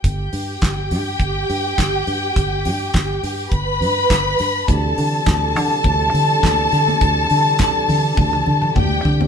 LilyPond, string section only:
\new Staff \with { instrumentName = "String section" } { \time 4/4 \key g \major \tempo 4 = 103 <g' g''>1~ | <g' g''>2 <b' b''>2 | <a' a''>1~ | <a' a''>2. <g' g''>4 | }